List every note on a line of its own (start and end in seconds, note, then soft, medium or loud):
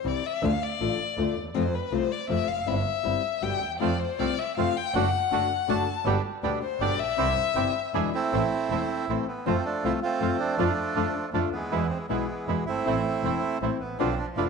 0.04 0.20 C2 medium
0.04 0.21 C3 medium
0.04 0.21 E3 medium
0.04 0.22 G3 medium
0.04 0.22 C4 medium
0.04 0.22 E4 medium
0.04 0.28 D5 medium
0.26 0.47 E5 medium
0.42 0.58 D2 loud
0.42 0.51 D3 medium
0.42 0.51 A3 medium
0.42 0.51 D4 medium
0.42 0.51 F4 medium
0.42 0.64 F5 medium
0.63 1.36 D5 medium
0.80 0.96 A1 medium
0.80 0.97 D3 medium
0.80 0.97 A3 medium
0.80 0.97 D4 medium
0.80 0.97 F4 medium
1.17 1.33 D2 medium
1.17 1.34 D3 medium
1.17 1.34 A3 medium
1.17 1.34 D4 medium
1.17 1.34 F4 medium
1.36 1.53 D#2 medium
1.54 1.70 F2 loud
1.54 1.63 C3 medium
1.54 1.63 F3 medium
1.54 1.63 A3 medium
1.54 1.63 C4 medium
1.54 1.64 F4 medium
1.54 1.76 C5 medium
1.75 1.95 B4 medium
1.91 2.07 C2 medium
1.91 2.08 C3 medium
1.91 2.08 F3 medium
1.91 2.08 A3 medium
1.91 2.08 C4 medium
1.91 2.09 F4 medium
1.91 2.13 C5 medium
2.12 2.29 D5 medium
2.28 2.45 F2 medium
2.28 2.46 C3 medium
2.28 2.46 F3 medium
2.28 2.46 A3 medium
2.28 2.46 C4 medium
2.28 2.46 F4 medium
2.28 2.50 E5 medium
2.48 2.66 F1 medium
2.48 2.69 F5 medium
2.66 2.82 G1 loud
2.66 2.75 G3 medium
2.66 2.75 C4 medium
2.66 2.76 E4 medium
2.66 3.44 E5 medium
3.03 3.20 G1 medium
3.03 3.21 G3 medium
3.03 3.21 C4 medium
3.03 3.22 E4 medium
3.42 3.58 G1 medium
3.42 3.59 B2 medium
3.42 3.59 D3 medium
3.42 3.59 G3 medium
3.42 3.59 B3 medium
3.42 3.60 G4 medium
3.42 3.71 G5 medium
3.61 3.80 D#2 medium
3.79 3.96 F2 medium
3.79 3.89 C3 medium
3.79 3.89 F3 medium
3.79 3.90 A3 medium
3.79 3.97 A3 medium
3.79 3.97 C4 medium
3.79 3.90 C4 medium
3.79 3.90 F4 medium
3.79 3.97 F4 medium
3.79 4.01 D5 medium
3.99 4.21 C5 medium
4.19 4.35 C2 medium
4.19 4.36 C3 medium
4.19 4.36 F3 medium
4.19 4.35 A3 soft
4.19 4.36 A3 medium
4.19 4.35 C4 soft
4.19 4.36 C4 medium
4.19 4.35 F4 medium
4.19 4.36 F4 medium
4.19 4.40 D5 medium
4.39 4.57 E5 medium
4.57 4.73 F2 medium
4.57 4.74 C3 medium
4.57 4.74 F3 medium
4.57 4.74 A3 medium
4.57 4.73 A3 soft
4.57 4.74 C4 medium
4.57 4.73 C4 soft
4.57 4.74 F4 medium
4.57 4.73 F4 medium
4.57 4.78 F5 medium
4.77 4.96 G5 medium
4.94 5.10 F#1 loud
4.94 5.03 D3 medium
4.94 5.10 A3 medium
4.94 5.04 A3 medium
4.94 5.10 D4 medium
4.94 5.04 D4 medium
4.94 5.10 F#4 medium
4.94 5.04 F#4 medium
4.94 5.71 F#5 loud
5.31 5.48 F#1 medium
5.31 5.48 D3 medium
5.31 5.48 A3 medium
5.31 5.48 D4 medium
5.31 5.48 D4 soft
5.31 5.48 F#4 medium
5.68 5.84 F#1 medium
5.68 5.85 D3 medium
5.68 5.85 A3 medium
5.68 5.85 D4 medium
5.68 5.85 D4 soft
5.68 5.85 F#4 medium
5.68 5.97 A5 medium
6.05 6.21 G1 loud
6.05 6.14 B2 medium
6.05 6.15 D3 medium
6.05 6.15 G3 medium
6.05 6.22 B3 medium
6.05 6.15 B3 medium
6.05 6.22 D4 medium
6.05 6.22 G4 medium
6.05 6.15 G4 medium
6.43 6.59 D2 medium
6.43 6.60 B2 medium
6.43 6.60 D3 medium
6.43 6.60 G3 medium
6.43 6.59 B3 medium
6.43 6.60 B3 medium
6.43 6.59 D4 soft
6.43 6.59 G4 medium
6.43 6.60 G4 medium
6.62 6.83 C5 medium
6.80 6.96 G1 medium
6.80 6.97 B2 medium
6.80 6.97 D3 medium
6.80 6.97 G3 medium
6.80 6.96 B3 medium
6.80 6.97 B3 medium
6.80 6.96 D4 soft
6.80 6.96 G4 medium
6.80 6.98 G4 medium
6.80 7.01 D5 medium
6.99 7.17 A#1 medium
6.99 8.13 E5 loud
7.17 7.33 C2 loud
7.17 7.26 C3 medium
7.17 7.26 E3 medium
7.17 7.27 G3 medium
7.17 7.26 C4 medium
7.17 7.34 C4 medium
7.17 7.34 E4 medium
7.17 7.27 E4 medium
7.17 7.34 G4 medium
7.55 7.71 G1 medium
7.55 7.72 C3 medium
7.55 7.72 E3 medium
7.55 7.72 G3 medium
7.55 7.71 C4 medium
7.55 7.72 C4 medium
7.55 7.71 E4 soft
7.55 7.72 E4 medium
7.55 7.71 G4 medium
7.93 8.10 E2 medium
7.93 8.11 B2 medium
7.93 8.11 D3 medium
7.93 8.11 G#3 medium
7.93 8.11 B3 medium
7.93 8.10 D4 medium
7.93 8.10 E4 soft
7.93 8.11 E4 medium
7.93 8.10 G#4 medium
8.15 9.06 A3 medium
8.15 9.06 C4 medium
8.15 9.12 E4 medium
8.32 8.49 A1 medium
8.32 8.41 E3 medium
8.32 8.48 A3 medium
8.32 8.41 A3 medium
8.32 8.49 C4 medium
8.32 8.42 C4 medium
8.32 8.49 E4 medium
8.32 8.42 E4 medium
8.70 8.86 E1 medium
8.70 8.87 E3 medium
8.70 8.88 A3 medium
8.70 8.87 A3 soft
8.70 8.88 C4 medium
8.70 8.87 C4 soft
8.70 8.88 E4 medium
8.70 8.87 E4 soft
9.09 9.24 A1 medium
9.09 9.26 E3 medium
9.09 9.25 A3 soft
9.09 9.26 A3 medium
9.09 9.27 A3 medium
9.09 9.25 C4 soft
9.09 9.26 C4 medium
9.09 9.25 E4 medium
9.09 9.26 E4 medium
9.28 9.45 B3 medium
9.46 9.62 F2 medium
9.46 9.55 C3 medium
9.46 9.55 F3 medium
9.46 10.00 F3 medium
9.46 9.62 A3 medium
9.46 9.55 A3 medium
9.46 10.00 A3 medium
9.46 9.62 C4 medium
9.46 9.55 C4 medium
9.46 9.65 C4 medium
9.46 9.62 F4 medium
9.46 9.55 F4 medium
9.66 9.85 D4 medium
9.84 9.99 C2 medium
9.84 10.00 C3 medium
9.84 10.00 F3 medium
9.84 9.99 A3 soft
9.84 10.00 A3 medium
9.84 9.99 C4 soft
9.84 10.01 C4 medium
9.84 9.93 E4 medium
9.84 10.00 F4 soft
9.84 10.01 F4 medium
10.02 10.40 A3 medium
10.02 10.55 C4 medium
10.02 10.37 F4 loud
10.20 10.36 F2 medium
10.20 10.37 C3 medium
10.20 10.37 F3 medium
10.20 10.37 A3 medium
10.20 10.37 A3 soft
10.20 10.38 C4 medium
10.20 10.37 C4 soft
10.20 10.38 F4 medium
10.20 10.37 F4 medium
10.40 11.30 F3 medium
10.40 11.30 A3 medium
10.40 11.29 D4 medium
10.58 10.74 F2 medium
10.58 10.67 D3 medium
10.58 10.74 A3 medium
10.58 10.67 A3 medium
10.58 10.74 D4 medium
10.58 10.67 D4 medium
10.58 10.74 F4 medium
10.58 10.67 F4 medium
10.95 11.11 F2 medium
10.95 11.12 D3 medium
10.95 11.11 A3 soft
10.95 11.12 A3 medium
10.95 11.11 D4 soft
10.95 11.13 D4 medium
10.95 11.11 F4 medium
10.95 11.13 F4 medium
11.32 11.48 F2 medium
11.32 11.50 D3 medium
11.32 11.50 A3 medium
11.32 11.49 A3 soft
11.32 11.50 A3 medium
11.32 11.49 D4 soft
11.32 11.50 D4 medium
11.32 11.49 F4 medium
11.32 11.50 F4 medium
11.51 11.70 D2 medium
11.51 12.06 E3 medium
11.51 12.07 G#3 medium
11.51 11.87 B3 medium
11.71 11.87 E2 medium
11.71 11.80 B2 medium
11.71 11.80 E3 medium
11.71 11.87 G#3 medium
11.71 11.80 G#3 medium
11.71 11.87 B3 medium
11.71 11.81 B3 medium
11.71 11.87 E4 medium
11.71 11.81 E4 medium
11.90 11.98 C4 medium
12.09 12.25 B1 medium
12.09 12.26 B2 medium
12.09 12.26 E3 medium
12.09 12.64 E3 medium
12.09 12.25 G#3 soft
12.09 12.26 G#3 medium
12.09 12.64 G#3 medium
12.09 12.25 B3 soft
12.09 12.26 B3 medium
12.09 12.45 B3 medium
12.09 12.25 E4 medium
12.09 12.26 E4 medium
12.47 12.63 E2 medium
12.47 12.64 B2 medium
12.47 12.65 E3 medium
12.47 12.63 G#3 soft
12.47 12.65 G#3 medium
12.47 12.64 B3 soft
12.47 12.65 B3 medium
12.47 12.64 E4 soft
12.47 12.65 E4 medium
12.66 12.85 G1 soft
12.66 13.59 A3 medium
12.66 13.59 C4 medium
12.66 13.57 E4 medium
12.85 13.02 A1 medium
12.85 12.94 E3 medium
12.85 12.95 A3 medium
12.85 13.02 A3 medium
12.85 12.95 C4 medium
12.85 13.02 C4 medium
12.85 12.95 E4 medium
12.85 13.02 E4 medium
13.23 13.40 E1 medium
13.23 13.40 E3 medium
13.23 13.40 A3 medium
13.23 13.40 A3 soft
13.23 13.40 C4 medium
13.23 13.40 C4 soft
13.23 13.41 E4 medium
13.23 13.40 E4 soft
13.61 13.77 A1 medium
13.61 13.78 E3 medium
13.61 13.78 A3 medium
13.61 13.78 A3 soft
13.61 13.70 A3 medium
13.61 13.79 C4 medium
13.61 13.78 C4 soft
13.61 13.79 E4 medium
13.61 13.78 E4 medium
13.80 13.99 A1 soft
13.80 13.98 B3 medium
13.99 14.15 B1 medium
13.99 14.08 B2 medium
13.99 14.08 D3 medium
13.99 14.49 F3 medium
13.99 14.15 B3 medium
13.99 14.08 B3 medium
13.99 14.19 C4 medium
13.99 14.15 D4 medium
13.99 14.08 D4 medium
13.99 14.15 F4 medium
13.99 14.08 F4 medium
14.18 14.26 D4 medium
14.36 14.49 F1 medium
14.36 14.49 B2 medium
14.36 14.49 D3 medium
14.36 14.49 B3 soft
14.36 14.49 B3 medium
14.36 14.49 D4 soft
14.36 14.49 D4 medium
14.36 14.45 E4 medium
14.36 14.49 F4 medium